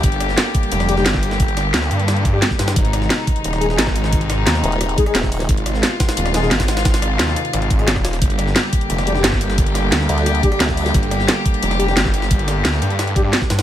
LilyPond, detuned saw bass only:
\new Staff \with { instrumentName = "Detuned saw bass" } { \clef bass \time 4/4 \key g \phrygian \tempo 4 = 176 g,,4 r4 f,,4 g,,4 | g,,4 d,8 g,4. r8 g,8 | aes,,4 r4 ees,,4 aes,,4 | aes,,4 ees,8 r2 r8 |
aes,,4 r4 ees,,4 aes,,4 | aes,,4 ees,8 r8 aes,,4. ees,,8 | g,,4 r4 f,,4 g,,4 | g,,4 d,8 r2 r8 |
g,,4 r4 f,,4 g,,4 | g,,4 d,8 g,4. r8 g,8 | }